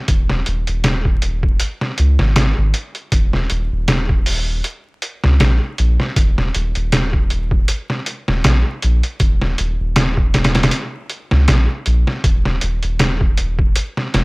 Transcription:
0.08 D#1, kick, closed hi-hat
0.29 snare
0.46 D#1, closed hi-hat
0.67 D#1, closed hi-hat
0.84 snare, closed hi-hat
1.05 kick
1.22 closed hi-hat
1.43 kick
1.60 closed hi-hat
1.81 snare
1.98 C#2, closed hi-hat
2.19 G#1, snare
2.36 snare, closed hi-hat
2.58 G#1
2.74 closed hi-hat
2.95 closed hi-hat
3.12 D#1, kick, closed hi-hat
3.33 snare
3.50 D#1, closed hi-hat
3.72 D#1
3.88 snare, closed hi-hat
4.09 kick
4.26 open hi-hat
4.64 closed hi-hat
5.02 closed hi-hat
5.24 C#2, snare
5.40 A#1, snare, closed hi-hat
5.78 A#1, closed hi-hat
6.00 snare
6.16 D#1, kick, closed hi-hat
6.38 snare
6.55 D#1, closed hi-hat
6.75 D#1, closed hi-hat
6.92 snare, closed hi-hat
7.13 kick
7.30 closed hi-hat
7.51 kick
7.68 closed hi-hat
7.90 snare
8.06 closed hi-hat
8.28 D#1, snare
8.44 A#1, snare, closed hi-hat
8.82 A#1, closed hi-hat
9.03 closed hi-hat
9.20 D#1, kick, closed hi-hat
9.41 snare
9.58 D#1, closed hi-hat
9.80 D#1
9.96 snare, closed hi-hat
10.17 kick
10.34 snare, closed hi-hat
10.44 snare, closed hi-hat
10.55 snare, closed hi-hat
10.63 snare, closed hi-hat
10.71 closed hi-hat
11.10 closed hi-hat
11.31 C#2, snare
11.48 A#1, snare, closed hi-hat
11.86 A#1, closed hi-hat
12.07 snare
12.24 D#1, kick, closed hi-hat
12.45 snare
12.61 D#1, closed hi-hat
12.83 D#1, closed hi-hat
12.99 snare, closed hi-hat
13.21 kick
13.37 closed hi-hat
13.59 kick
13.76 closed hi-hat
13.97 snare
14.14 E1, snare, closed hi-hat

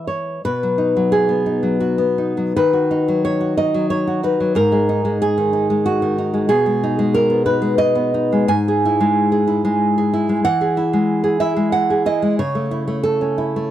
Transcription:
Already playing: E3 G#3 B3
0.07 C#5
0.45 B2 B4
0.63 F#3
0.78 D#4
0.97 F#3
1.12 G#4
1.29 B3
1.46 D#4
1.63 F#3
1.80 F#4
1.98 B3
2.18 D#4
2.37 F#3
2.56 D#3 B4
2.73 F#4
2.91 D#4
3.08 F#3
3.25 C#5
3.40 F#4
3.57 D#4 D#5
3.74 F#3
3.90 C#5
4.07 F#4
4.23 D#4 B4
4.40 F#3
4.55 G#2 A#4
4.72 G#3
4.89 D#4
5.05 G#3
5.22 G#4
5.38 D#3
5.53 D#4
5.70 G#3
5.86 F#4
6.02 D#3
6.18 D#4
6.34 G#3
6.49 B2 G#4
6.66 G#3
6.84 D#4
6.99 G#3
7.14 A#4
7.30 B3
7.46 D#4 B4
7.62 G#3
7.78 D#5
7.95 B3
8.14 D#4
8.32 G#3
8.48 G#2 G#5
8.68 G#4
8.85 E4
9.01 G#3
9.32 G#4
9.47 E4
9.65 G#3
9.98 G#4
10.14 E4
10.29 G#3
10.45 E3 F#5
10.61 G#4
10.77 E4
10.93 G#3
11.24 G#4
11.40 E4 E5
11.56 G#3
11.72 F#5
11.90 G#4
12.06 E4 D#5
12.22 G#3
12.39 C#3 C#5
12.55 A3
12.71 E4
12.88 A3
13.03 A4
13.21 C#4
13.38 E4
13.56 A3

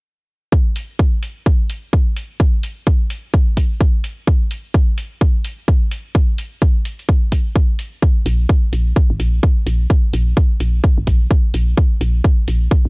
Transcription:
0.52 kick
0.76 open hi-hat
0.99 kick
1.23 open hi-hat
1.46 kick
1.70 open hi-hat
1.93 kick
2.16 open hi-hat
2.40 kick
2.63 open hi-hat
2.87 kick
3.10 open hi-hat
3.34 kick
3.57 kick, open hi-hat
3.81 kick
4.04 open hi-hat
4.27 kick
4.51 open hi-hat
4.74 kick
4.98 open hi-hat
5.21 kick
5.45 open hi-hat
5.68 kick
5.91 open hi-hat
6.15 kick
6.38 open hi-hat
6.62 kick
6.85 open hi-hat
6.99 open hi-hat
7.09 kick
7.32 kick, open hi-hat
7.56 kick
7.79 open hi-hat
8.02 kick
8.26 A#1, open hi-hat
8.49 kick
8.73 A#1, open hi-hat
8.96 kick
9.10 G#1
9.20 A#1, open hi-hat
9.43 kick
9.66 A#1, open hi-hat
9.90 kick
10.13 A#1, open hi-hat
10.37 kick
10.60 A#1, open hi-hat
10.84 kick
10.98 G#1
11.07 A#1, kick, open hi-hat
11.31 kick
11.54 A#1, open hi-hat
11.77 kick
12.01 A#1, open hi-hat
12.24 kick
12.48 A#1, open hi-hat
12.71 kick
12.85 G#1

